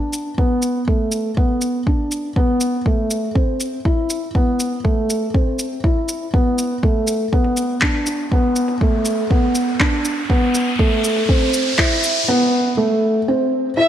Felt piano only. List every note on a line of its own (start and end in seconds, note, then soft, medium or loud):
0.00 0.30 D4 medium
0.38 0.79 B3 medium
0.88 1.29 A3 medium
1.37 1.78 B3 medium
1.87 2.28 D4 medium
2.37 2.78 B3 medium
2.86 3.27 A3 medium
3.35 3.76 C4 medium
3.85 4.26 E4 medium
4.35 4.76 B3 medium
4.84 5.25 A3 medium
5.34 5.75 C4 medium
5.84 6.25 E4 medium
6.34 6.74 B3 medium
6.84 7.24 A3 medium
7.33 7.74 B3 medium
7.83 8.23 D4 medium
8.33 8.73 B3 medium
8.82 9.23 A3 medium
9.31 9.71 B3 medium
9.80 10.21 D4 medium
10.30 10.71 B3 loud
10.80 11.20 A3 medium
11.29 11.70 C4 medium
11.78 12.19 E4 medium
12.28 12.69 B3 loud
12.77 13.18 A3 medium
13.28 13.69 C4 medium
13.77 13.88 E4 medium